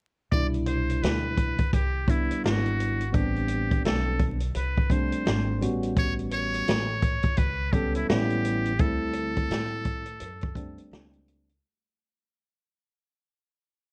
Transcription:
0.32 0.99 C2 medium
0.32 1.56 B2 medium
0.32 1.55 G3 medium
0.32 1.56 D4 medium
0.32 1.56 E4 medium
0.32 0.48 D5 loud
0.32 kick loud
0.32 closed hi-hat medium
0.54 closed hi-hat soft
0.66 1.04 C5 medium
0.66 closed hi-hat medium
0.90 closed hi-hat soft
1.02 1.57 D2 medium
1.02 1.73 B4 loud
1.02 snare loud
1.02 closed hi-hat medium
1.37 kick medium
1.37 closed hi-hat medium
1.58 muted upright bass stroke soft
1.58 kick medium
1.58 closed hi-hat soft
1.73 2.28 C2 medium
1.73 2.11 G4 medium
1.73 kick medium
1.73 closed hi-hat medium
2.08 3.02 G3 medium
2.08 3.02 B3 medium
2.08 3.02 D4 medium
2.08 3.03 E4 medium
2.08 2.44 E4 medium
2.08 kick medium
2.08 closed hi-hat medium
2.31 muted upright bass stroke soft
2.31 closed hi-hat medium
2.44 3.11 G#1 medium
2.44 3.11 F#4 medium
2.44 snare loud
2.44 closed hi-hat medium
2.66 closed hi-hat soft
2.80 closed hi-hat medium
3.01 closed hi-hat soft
3.11 3.82 A1 loud
3.11 4.37 G3 medium
3.11 4.37 B3 medium
3.11 4.37 C4 medium
3.11 4.37 D4 medium
3.11 3.16 F#4 medium
3.11 3.85 G4 loud
3.11 kick loud
3.11 closed hi-hat medium
3.36 closed hi-hat soft
3.48 closed hi-hat medium
3.71 kick medium
3.71 closed hi-hat soft
3.85 4.52 B1 medium
3.85 4.28 A4 medium
3.85 snare loud
3.85 closed hi-hat medium
4.19 kick medium
4.19 closed hi-hat medium
4.40 closed hi-hat medium
4.55 5.10 C2 medium
4.55 4.93 B4 medium
4.55 closed hi-hat medium
4.78 kick medium
4.90 5.60 G3 medium
4.90 5.61 A3 medium
4.90 5.62 C4 medium
4.90 5.62 D4 medium
4.90 5.62 C5 medium
4.90 kick medium
4.90 closed hi-hat medium
5.12 muted upright bass stroke soft
5.12 closed hi-hat medium
5.26 5.59 G#1 loud
5.26 snare loud
5.26 closed hi-hat medium
5.61 6.63 A1 medium
5.61 6.85 G3 medium
5.61 6.85 B3 medium
5.61 6.85 C#4 medium
5.61 6.85 F#4 medium
5.61 closed hi-hat medium
5.83 closed hi-hat soft
5.96 6.14 C#5 loud
5.96 kick loud
5.96 closed hi-hat medium
6.19 closed hi-hat soft
6.31 7.39 C#5 loud
6.31 closed hi-hat medium
6.54 closed hi-hat soft
6.68 7.22 A1 medium
6.68 snare loud
6.68 closed hi-hat medium
7.02 kick medium
7.02 closed hi-hat medium
7.23 muted upright bass stroke soft
7.23 kick medium
7.23 closed hi-hat medium
7.37 8.05 C#2 medium
7.37 7.74 B4 loud
7.37 kick loud
7.37 closed hi-hat medium
7.73 8.08 G3 medium
7.73 8.09 B3 medium
7.73 8.09 C#4 medium
7.73 7.95 G4 medium
7.73 8.10 A4 medium
7.73 kick medium
7.73 closed hi-hat medium
7.95 8.08 E4 medium
7.95 closed hi-hat medium
8.09 8.76 A1 loud
8.09 8.72 G3 medium
8.09 8.72 B3 medium
8.09 8.72 C#4 medium
8.09 8.72 E4 medium
8.09 8.82 G4 loud
8.09 snare loud
8.09 closed hi-hat medium
8.30 closed hi-hat soft
8.45 closed hi-hat medium
8.65 closed hi-hat soft
8.79 9.47 D2 loud
8.79 10.03 G3 medium
8.79 10.03 A3 medium
8.79 10.03 C4 medium
8.79 10.03 E4 medium
8.79 10.91 A4 loud
8.79 kick loud
8.79 closed hi-hat medium
9.13 closed hi-hat medium
9.36 kick medium
9.36 closed hi-hat soft
9.51 10.17 A2 medium
9.51 snare loud
9.51 closed hi-hat medium
9.85 kick medium
9.85 closed hi-hat medium
10.06 closed hi-hat medium
10.20 10.75 F#2 medium
10.20 closed hi-hat medium
10.41 kick medium
10.41 closed hi-hat soft
10.55 11.50 G3 medium
10.55 11.50 A3 medium
10.55 11.50 C4 medium
10.55 11.50 D4 medium
10.55 kick medium
10.55 closed hi-hat medium
10.78 closed hi-hat medium
10.91 11.58 C#2 medium
10.91 snare loud
10.91 closed hi-hat medium
11.13 closed hi-hat soft
11.28 closed hi-hat medium
11.49 closed hi-hat soft

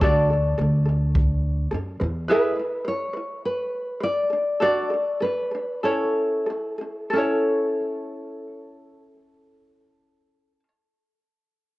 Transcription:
0.01 0.54 D2 medium
0.01 0.30 D4 medium
0.01 0.30 F#4 medium
0.01 0.29 A4 medium
0.01 0.29 D5 medium
0.01 1.12 D5 medium
0.01 kick loud
0.30 0.55 D4 soft
0.30 0.53 A4 soft
0.58 1.68 D2 medium
0.58 0.83 D4 medium
0.58 0.81 A4 medium
0.85 1.11 D4 medium
0.85 1.09 A4 soft
1.15 kick loud
1.71 1.98 F#2 medium
1.71 1.96 D4 medium
1.71 1.95 A4 medium
2.00 2.27 E2 medium
2.00 2.25 E4 soft
2.00 2.23 B4 soft
2.28 2.58 E4 medium
2.28 2.58 G#4 medium
2.28 2.54 B4 medium
2.28 2.87 B4 medium
2.28 2.55 E5 medium
2.56 2.82 E4 soft
2.56 2.80 B4 soft
2.85 3.10 E4 medium
2.85 3.09 B4 medium
2.85 3.45 C#5 medium
3.13 3.39 E4 soft
3.13 3.38 B4 soft
3.45 4.03 B4 medium
4.00 4.27 E4 medium
4.00 4.25 B4 soft
4.00 4.61 D5 medium
4.30 4.56 D4 soft
4.30 4.55 A4 soft
4.60 4.91 D4 medium
4.60 4.92 F#4 medium
4.60 4.89 A4 medium
4.60 5.18 D5 medium
4.60 4.90 D5 medium
4.90 5.17 D4 soft
4.90 5.15 A4 soft
5.21 5.46 A4 soft
5.21 5.80 B4 medium
5.25 5.48 D4 medium
5.51 5.79 D4 soft
5.51 5.77 A4 soft
5.83 6.50 C#4 medium
5.83 7.15 E4 medium
5.83 6.46 A4 medium
5.83 6.76 A4 medium
5.83 6.46 C#5 medium
6.46 6.75 C#4 medium
6.46 6.73 A4 soft
6.78 7.08 C#4 soft
6.78 7.06 A4 soft
7.10 10.63 C#4 medium
7.10 7.17 A4 medium
7.10 10.59 A4 medium
7.16 10.66 E4 medium
7.16 10.68 C#5 medium

